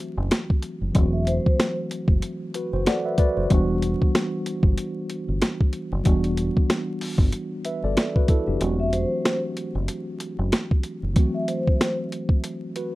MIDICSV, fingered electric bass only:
0, 0, Header, 1, 2, 480
1, 0, Start_track
1, 0, Tempo, 638298
1, 714, Time_signature, 4, 2, 24, 8
1, 9738, End_track
2, 0, Start_track
2, 0, Title_t, "Fingered electric bass"
2, 0, Program_c, 0, 33
2, 132, Note_on_c, 0, 30, 102
2, 221, Note_off_c, 0, 30, 0
2, 612, Note_on_c, 0, 30, 78
2, 701, Note_off_c, 0, 30, 0
2, 716, Note_on_c, 0, 28, 106
2, 1042, Note_off_c, 0, 28, 0
2, 1562, Note_on_c, 0, 30, 83
2, 1655, Note_off_c, 0, 30, 0
2, 2053, Note_on_c, 0, 30, 87
2, 2141, Note_off_c, 0, 30, 0
2, 2533, Note_on_c, 0, 30, 81
2, 2621, Note_off_c, 0, 30, 0
2, 2637, Note_on_c, 0, 28, 102
2, 2962, Note_off_c, 0, 28, 0
2, 3481, Note_on_c, 0, 31, 89
2, 3574, Note_off_c, 0, 31, 0
2, 3973, Note_on_c, 0, 31, 90
2, 4061, Note_off_c, 0, 31, 0
2, 4452, Note_on_c, 0, 30, 95
2, 4541, Note_off_c, 0, 30, 0
2, 4554, Note_on_c, 0, 28, 101
2, 4881, Note_off_c, 0, 28, 0
2, 5399, Note_on_c, 0, 31, 89
2, 5493, Note_off_c, 0, 31, 0
2, 5891, Note_on_c, 0, 31, 88
2, 5980, Note_off_c, 0, 31, 0
2, 6373, Note_on_c, 0, 30, 83
2, 6461, Note_off_c, 0, 30, 0
2, 6474, Note_on_c, 0, 28, 102
2, 6800, Note_off_c, 0, 28, 0
2, 7331, Note_on_c, 0, 30, 91
2, 7420, Note_off_c, 0, 30, 0
2, 7812, Note_on_c, 0, 30, 101
2, 7901, Note_off_c, 0, 30, 0
2, 8292, Note_on_c, 0, 30, 79
2, 8381, Note_off_c, 0, 30, 0
2, 9738, End_track
0, 0, End_of_file